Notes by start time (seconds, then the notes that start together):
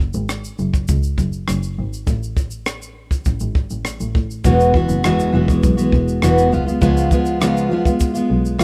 0.13 G#1, shaker
0.29 cross-stick, shaker
0.44 shaker
0.59 F#1, shaker
0.73 kick, cross-stick, shaker
0.88 C#2, kick, shaker
1.03 shaker
1.18 F#1, kick, shaker
1.33 shaker
1.48 F#1, cross-stick, shaker
1.63 shaker
1.78 G#1
1.93 shaker
2.07 A1, kick, shaker
2.23 shaker
2.37 kick, shaker
2.51 shaker
2.66 cross-stick, shaker
2.82 shaker
3.11 kick, shaker
3.25 A1, kick, shaker
3.40 G#1, shaker
3.55 kick
3.70 A1, shaker
3.85 A1, cross-stick, shaker
4.00 A1, shaker
4.15 A2, kick
4.30 shaker
4.44 E1 E2 B2 E3 G#3 B3 F#4, kick, shaker
4.60 shaker
4.74 E3 G#3 B3 F#4, kick
4.89 F#1, shaker
5.04 E2 B2 E3 G#3 B3 F#4, cross-stick, shaker
5.20 shaker
5.32 E1 E3 G#3 B3 F#4
5.48 E3 G#3 B3 F#4, kick, shaker
5.63 B1, kick, shaker
5.77 E3 G#3 B3 F#4, shaker
5.92 E1, kick
6.08 shaker
6.22 E1 E2 B2 E3 G#3 B3 F#4, cross-stick, shaker
6.38 shaker
6.51 C#2 F3 G#3 B3 F4, shaker
6.66 G#3 B3 F4, shaker
6.81 C#2 C#3 F3 G#3 B3 F4, kick, shaker
6.97 shaker
7.11 F3 G#3 B3 F4, kick, shaker
7.25 shaker
7.40 C#3 F3 G#3 B3 F4, cross-stick, shaker
7.57 shaker
7.70 F3 G#3 B3 F4
7.85 G#3 B3 F4, kick, cross-stick, shaker
8.00 kick, shaker
8.14 G#3 B3 F4, shaker
8.30 B1
8.45 shaker
8.58 C#2 C#3 F3 G#3 B3 F4, cross-stick, shaker